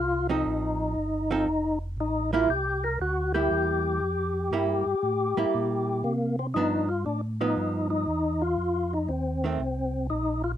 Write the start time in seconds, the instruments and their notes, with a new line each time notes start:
Already playing: tonewheel organ C2 F4
0.29 hollow-body jazz guitar F3 C4 D#4 A4, tonewheel organ D#4
0.45 tonewheel organ A1
0.97 tonewheel organ G1
1.31 hollow-body jazz guitar F3 C4 D#4 A4
1.47 tonewheel organ F1
1.97 tonewheel organ A1 D#4
2.33 hollow-body jazz guitar G3 A#3 E4, tonewheel organ F4
2.48 tonewheel organ C2 G4
2.84 tonewheel organ A#4
3.00 tonewheel organ D2 F#4
3.34 hollow-body jazz guitar G3 A#3 E4, tonewheel organ G4
3.51 tonewheel organ E2
4.00 tonewheel organ F2
4.51 tonewheel organ G2, hollow-body jazz guitar G3 A#3 E4
4.86 tonewheel organ G2
5.03 tonewheel organ A2
5.37 tonewheel organ A2, hollow-body jazz guitar G3 A#3 E4
5.54 tonewheel organ A#2
6.04 tonewheel organ C3 A#3
6.39 tonewheel organ C4
6.54 tonewheel organ G2 D#4, hollow-body jazz guitar F3 B3 D4
6.89 tonewheel organ F4
7.06 tonewheel organ A2 D4
7.41 hollow-body jazz guitar F3 B3, tonewheel organ D#4
7.57 tonewheel organ G2
7.90 tonewheel organ D#4
8.08 tonewheel organ E2
8.42 tonewheel organ F4
8.58 tonewheel organ F2
8.93 tonewheel organ D#4
9.09 tonewheel organ D#2 C4
9.44 hollow-body jazz guitar D#3 A3 C4
9.60 tonewheel organ C2
10.10 tonewheel organ A#1 D#4
10.44 tonewheel organ F4